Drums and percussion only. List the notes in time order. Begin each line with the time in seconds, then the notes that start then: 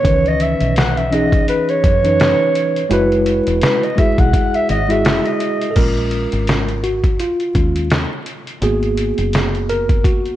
0.05 kick, closed hi-hat
0.26 closed hi-hat
0.40 closed hi-hat
0.60 closed hi-hat
0.76 snare, closed hi-hat
0.97 closed hi-hat
1.13 closed hi-hat
1.32 kick, closed hi-hat
1.48 closed hi-hat
1.69 closed hi-hat
1.84 kick, closed hi-hat
2.05 closed hi-hat
2.20 snare, closed hi-hat
2.55 closed hi-hat
2.76 closed hi-hat
2.91 closed hi-hat
3.12 closed hi-hat
3.26 closed hi-hat
3.47 closed hi-hat
3.61 snare, closed hi-hat
3.83 closed hi-hat
3.98 kick, closed hi-hat
4.18 kick, closed hi-hat
4.33 kick, closed hi-hat
4.54 closed hi-hat
4.69 closed hi-hat
4.90 closed hi-hat
5.05 snare, closed hi-hat
5.26 closed hi-hat
5.40 closed hi-hat
5.61 closed hi-hat
5.76 kick, closed hi-hat, crash
5.97 closed hi-hat
6.11 closed hi-hat
6.32 closed hi-hat
6.47 snare, closed hi-hat
6.69 closed hi-hat
6.84 closed hi-hat
7.04 kick, closed hi-hat
7.19 closed hi-hat
7.40 closed hi-hat
7.55 kick, closed hi-hat
7.76 closed hi-hat
7.90 snare, closed hi-hat
8.26 closed hi-hat
8.47 closed hi-hat
8.62 closed hi-hat
8.83 closed hi-hat
8.97 closed hi-hat
9.18 closed hi-hat
9.33 snare, closed hi-hat
9.55 closed hi-hat
9.69 closed hi-hat
9.89 kick, closed hi-hat
10.04 kick, closed hi-hat
10.26 closed hi-hat